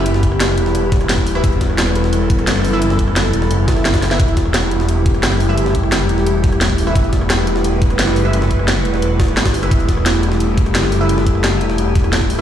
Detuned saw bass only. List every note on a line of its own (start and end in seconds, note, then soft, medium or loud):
0.00 0.56 F#1 loud
0.58 0.73 E1 loud
0.75 1.23 E1 loud
1.23 1.42 D#1 loud
1.44 1.60 E1 loud
1.61 2.46 E1 loud
2.47 3.32 F#1 loud
3.33 3.49 E1 loud
3.51 4.18 F#1 loud
4.20 4.35 E1 loud
4.37 5.22 E1 loud
5.23 6.08 F#1 loud
6.09 6.25 E1 loud
6.27 6.75 E1 medium
6.75 6.94 D#1 medium
6.95 7.11 E1 loud
7.13 7.98 E1 loud
7.99 8.84 F#1 loud
8.85 9.01 E1 loud
9.02 9.36 E1 loud
9.37 9.70 G1 loud
9.71 9.87 E1 loud
9.89 10.73 E1 loud
10.75 11.60 F#1 medium
11.61 11.77 E1 loud
11.78 12.41 E1 loud